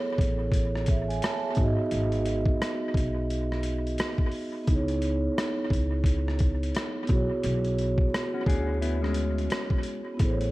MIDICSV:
0, 0, Header, 1, 5, 480
1, 0, Start_track
1, 0, Tempo, 689655
1, 1336, Time_signature, 4, 2, 24, 8
1, 7318, End_track
2, 0, Start_track
2, 0, Title_t, "Vibraphone"
2, 0, Program_c, 0, 11
2, 0, Control_c, 0, 64, 127
2, 0, Note_on_c, 0, 59, 74
2, 0, Note_on_c, 0, 64, 73
2, 0, Note_on_c, 0, 68, 73
2, 0, Note_on_c, 0, 69, 77
2, 0, Note_on_c, 0, 73, 96
2, 359, Note_off_c, 0, 68, 0
2, 368, Note_off_c, 0, 69, 0
2, 378, Note_off_c, 0, 73, 0
2, 620, Note_on_c, 0, 76, 67
2, 623, Note_on_c, 0, 68, 52
2, 750, Note_off_c, 0, 76, 0
2, 752, Note_off_c, 0, 68, 0
2, 753, Note_on_c, 0, 80, 74
2, 850, Note_off_c, 0, 80, 0
2, 852, Note_on_c, 0, 81, 77
2, 856, Note_on_c, 0, 73, 59
2, 986, Note_off_c, 0, 81, 0
2, 988, Note_off_c, 0, 73, 0
2, 996, Note_on_c, 0, 76, 63
2, 999, Note_on_c, 0, 68, 62
2, 1049, Note_off_c, 0, 59, 0
2, 1058, Note_on_c, 0, 59, 90
2, 1061, Note_off_c, 0, 64, 0
2, 1078, Note_on_c, 0, 63, 75
2, 1094, Note_on_c, 0, 66, 79
2, 1104, Note_off_c, 0, 68, 0
2, 1105, Control_c, 0, 64, 0
2, 1112, Note_on_c, 0, 68, 70
2, 1130, Note_on_c, 0, 75, 86
2, 1219, Control_c, 0, 64, 127
2, 1224, Note_off_c, 0, 76, 0
2, 2969, Note_off_c, 0, 59, 0
2, 2979, Note_off_c, 0, 63, 0
2, 2987, Note_off_c, 0, 66, 0
2, 2996, Note_off_c, 0, 68, 0
2, 3005, Note_off_c, 0, 75, 0
2, 3230, Note_on_c, 0, 59, 79
2, 3249, Note_on_c, 0, 63, 78
2, 3264, Control_c, 0, 64, 0
2, 3265, Note_on_c, 0, 64, 71
2, 3285, Note_on_c, 0, 68, 68
2, 3303, Note_on_c, 0, 73, 80
2, 3379, Control_c, 0, 64, 127
2, 4891, Note_off_c, 0, 59, 0
2, 4899, Note_on_c, 0, 59, 77
2, 4905, Note_off_c, 0, 63, 0
2, 4909, Note_off_c, 0, 64, 0
2, 4917, Note_on_c, 0, 64, 70
2, 4923, Note_off_c, 0, 68, 0
2, 4932, Note_off_c, 0, 73, 0
2, 4933, Note_on_c, 0, 66, 75
2, 4944, Control_c, 0, 64, 0
2, 4954, Note_on_c, 0, 68, 73
2, 4970, Note_on_c, 0, 73, 88
2, 5063, Control_c, 0, 64, 127
2, 6810, Note_off_c, 0, 59, 0
2, 6818, Note_off_c, 0, 64, 0
2, 6826, Note_off_c, 0, 66, 0
2, 6837, Note_off_c, 0, 68, 0
2, 6845, Note_off_c, 0, 73, 0
2, 7058, Note_on_c, 0, 59, 72
2, 7079, Note_on_c, 0, 64, 71
2, 7095, Note_on_c, 0, 68, 67
2, 7106, Control_c, 0, 64, 0
2, 7116, Note_on_c, 0, 69, 77
2, 7130, Note_on_c, 0, 72, 72
2, 7165, Note_off_c, 0, 72, 0
2, 7176, Note_on_c, 0, 73, 83
2, 7229, Control_c, 0, 64, 127
2, 7318, Note_off_c, 0, 59, 0
2, 7318, Note_off_c, 0, 64, 0
2, 7318, Note_off_c, 0, 68, 0
2, 7318, Note_off_c, 0, 69, 0
2, 7318, Note_off_c, 0, 73, 0
2, 7318, End_track
3, 0, Start_track
3, 0, Title_t, "Clean electric guitar"
3, 0, Program_c, 1, 27
3, 5805, Note_on_c, 1, 66, 79
3, 5806, Note_on_c, 1, 61, 67
3, 5896, Note_off_c, 1, 66, 0
3, 5897, Note_off_c, 1, 61, 0
3, 5899, Note_on_c, 1, 68, 94
3, 5900, Note_on_c, 1, 62, 76
3, 6125, Note_off_c, 1, 68, 0
3, 6126, Note_off_c, 1, 62, 0
3, 6135, Note_on_c, 1, 64, 80
3, 6139, Note_on_c, 1, 59, 68
3, 6268, Note_off_c, 1, 64, 0
3, 6269, Note_off_c, 1, 59, 0
3, 6275, Note_on_c, 1, 61, 84
3, 6281, Note_on_c, 1, 56, 67
3, 6967, Note_off_c, 1, 61, 0
3, 6970, Note_off_c, 1, 56, 0
3, 7318, End_track
4, 0, Start_track
4, 0, Title_t, "Upright bass"
4, 0, Program_c, 2, 32
4, 129, Note_on_c, 2, 33, 96
4, 825, Note_off_c, 2, 33, 0
4, 1095, Note_on_c, 2, 32, 97
4, 1214, Note_off_c, 2, 32, 0
4, 1333, Note_on_c, 2, 32, 101
4, 1744, Note_off_c, 2, 32, 0
4, 2049, Note_on_c, 2, 35, 75
4, 2744, Note_off_c, 2, 35, 0
4, 3255, Note_on_c, 2, 37, 91
4, 3666, Note_off_c, 2, 37, 0
4, 3971, Note_on_c, 2, 37, 80
4, 4666, Note_off_c, 2, 37, 0
4, 4937, Note_on_c, 2, 35, 108
4, 5055, Note_off_c, 2, 35, 0
4, 5179, Note_on_c, 2, 35, 110
4, 5587, Note_off_c, 2, 35, 0
4, 5891, Note_on_c, 2, 38, 97
4, 6585, Note_off_c, 2, 38, 0
4, 7099, Note_on_c, 2, 33, 110
4, 7318, Note_off_c, 2, 33, 0
4, 7318, End_track
5, 0, Start_track
5, 0, Title_t, "Drums"
5, 127, Note_on_c, 9, 36, 103
5, 145, Note_on_c, 9, 42, 62
5, 197, Note_off_c, 9, 36, 0
5, 215, Note_off_c, 9, 42, 0
5, 360, Note_on_c, 9, 36, 78
5, 372, Note_on_c, 9, 42, 73
5, 429, Note_off_c, 9, 36, 0
5, 442, Note_off_c, 9, 42, 0
5, 525, Note_on_c, 9, 37, 41
5, 595, Note_off_c, 9, 37, 0
5, 600, Note_on_c, 9, 42, 73
5, 612, Note_on_c, 9, 36, 99
5, 670, Note_off_c, 9, 42, 0
5, 682, Note_off_c, 9, 36, 0
5, 768, Note_on_c, 9, 42, 44
5, 838, Note_off_c, 9, 42, 0
5, 850, Note_on_c, 9, 42, 82
5, 863, Note_on_c, 9, 37, 112
5, 920, Note_off_c, 9, 42, 0
5, 932, Note_off_c, 9, 37, 0
5, 1078, Note_on_c, 9, 42, 56
5, 1092, Note_on_c, 9, 36, 98
5, 1147, Note_off_c, 9, 42, 0
5, 1162, Note_off_c, 9, 36, 0
5, 1330, Note_on_c, 9, 42, 72
5, 1400, Note_off_c, 9, 42, 0
5, 1476, Note_on_c, 9, 42, 41
5, 1545, Note_off_c, 9, 42, 0
5, 1570, Note_on_c, 9, 42, 66
5, 1639, Note_off_c, 9, 42, 0
5, 1709, Note_on_c, 9, 36, 89
5, 1779, Note_off_c, 9, 36, 0
5, 1822, Note_on_c, 9, 37, 99
5, 1827, Note_on_c, 9, 42, 73
5, 1891, Note_off_c, 9, 37, 0
5, 1897, Note_off_c, 9, 42, 0
5, 2048, Note_on_c, 9, 36, 93
5, 2068, Note_on_c, 9, 42, 60
5, 2118, Note_off_c, 9, 36, 0
5, 2138, Note_off_c, 9, 42, 0
5, 2299, Note_on_c, 9, 42, 74
5, 2369, Note_off_c, 9, 42, 0
5, 2450, Note_on_c, 9, 37, 39
5, 2519, Note_off_c, 9, 37, 0
5, 2527, Note_on_c, 9, 42, 71
5, 2596, Note_off_c, 9, 42, 0
5, 2692, Note_on_c, 9, 42, 45
5, 2761, Note_off_c, 9, 42, 0
5, 2771, Note_on_c, 9, 42, 71
5, 2783, Note_on_c, 9, 37, 104
5, 2840, Note_off_c, 9, 42, 0
5, 2853, Note_off_c, 9, 37, 0
5, 2911, Note_on_c, 9, 36, 81
5, 2980, Note_off_c, 9, 36, 0
5, 3003, Note_on_c, 9, 46, 42
5, 3073, Note_off_c, 9, 46, 0
5, 3253, Note_on_c, 9, 42, 75
5, 3254, Note_on_c, 9, 36, 113
5, 3322, Note_off_c, 9, 42, 0
5, 3324, Note_off_c, 9, 36, 0
5, 3398, Note_on_c, 9, 42, 44
5, 3468, Note_off_c, 9, 42, 0
5, 3492, Note_on_c, 9, 42, 60
5, 3562, Note_off_c, 9, 42, 0
5, 3745, Note_on_c, 9, 37, 111
5, 3751, Note_on_c, 9, 42, 75
5, 3815, Note_off_c, 9, 37, 0
5, 3820, Note_off_c, 9, 42, 0
5, 3969, Note_on_c, 9, 36, 90
5, 3990, Note_on_c, 9, 42, 67
5, 4039, Note_off_c, 9, 36, 0
5, 4060, Note_off_c, 9, 42, 0
5, 4203, Note_on_c, 9, 36, 79
5, 4216, Note_on_c, 9, 42, 78
5, 4272, Note_off_c, 9, 36, 0
5, 4286, Note_off_c, 9, 42, 0
5, 4372, Note_on_c, 9, 37, 37
5, 4442, Note_off_c, 9, 37, 0
5, 4446, Note_on_c, 9, 42, 69
5, 4456, Note_on_c, 9, 36, 99
5, 4516, Note_off_c, 9, 42, 0
5, 4526, Note_off_c, 9, 36, 0
5, 4615, Note_on_c, 9, 42, 48
5, 4685, Note_off_c, 9, 42, 0
5, 4695, Note_on_c, 9, 42, 73
5, 4708, Note_on_c, 9, 37, 123
5, 4765, Note_off_c, 9, 42, 0
5, 4778, Note_off_c, 9, 37, 0
5, 4922, Note_on_c, 9, 42, 57
5, 4935, Note_on_c, 9, 36, 104
5, 4992, Note_off_c, 9, 42, 0
5, 5005, Note_off_c, 9, 36, 0
5, 5174, Note_on_c, 9, 42, 82
5, 5244, Note_off_c, 9, 42, 0
5, 5321, Note_on_c, 9, 42, 42
5, 5391, Note_off_c, 9, 42, 0
5, 5418, Note_on_c, 9, 42, 63
5, 5488, Note_off_c, 9, 42, 0
5, 5553, Note_on_c, 9, 36, 81
5, 5623, Note_off_c, 9, 36, 0
5, 5668, Note_on_c, 9, 37, 103
5, 5674, Note_on_c, 9, 42, 64
5, 5738, Note_off_c, 9, 37, 0
5, 5743, Note_off_c, 9, 42, 0
5, 5891, Note_on_c, 9, 36, 97
5, 5913, Note_on_c, 9, 42, 66
5, 5960, Note_off_c, 9, 36, 0
5, 5982, Note_off_c, 9, 42, 0
5, 6141, Note_on_c, 9, 42, 72
5, 6210, Note_off_c, 9, 42, 0
5, 6293, Note_on_c, 9, 37, 40
5, 6363, Note_off_c, 9, 37, 0
5, 6364, Note_on_c, 9, 42, 71
5, 6434, Note_off_c, 9, 42, 0
5, 6531, Note_on_c, 9, 42, 41
5, 6601, Note_off_c, 9, 42, 0
5, 6613, Note_on_c, 9, 42, 67
5, 6626, Note_on_c, 9, 37, 103
5, 6683, Note_off_c, 9, 42, 0
5, 6696, Note_off_c, 9, 37, 0
5, 6753, Note_on_c, 9, 36, 86
5, 6822, Note_off_c, 9, 36, 0
5, 6843, Note_on_c, 9, 42, 62
5, 6913, Note_off_c, 9, 42, 0
5, 7095, Note_on_c, 9, 42, 71
5, 7097, Note_on_c, 9, 36, 105
5, 7164, Note_off_c, 9, 42, 0
5, 7166, Note_off_c, 9, 36, 0
5, 7243, Note_on_c, 9, 42, 42
5, 7313, Note_off_c, 9, 42, 0
5, 7318, End_track
0, 0, End_of_file